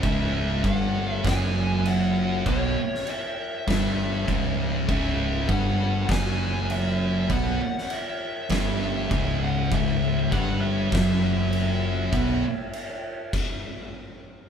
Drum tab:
CC |x---x---x---x---|x---x---x---x---|x---x---x---x---|x---x---x---x---|
SD |--------o-------|---o----o-------|--------o-------|---o----o-------|
BD |o---o---o-------|o-------o---o---|o---o---o-------|o-------o---o---|

CC |x---x---x---x---|x---x---x-------|
SD |--------o-------|----------------|
BD |o---o---o-------|o-------o-------|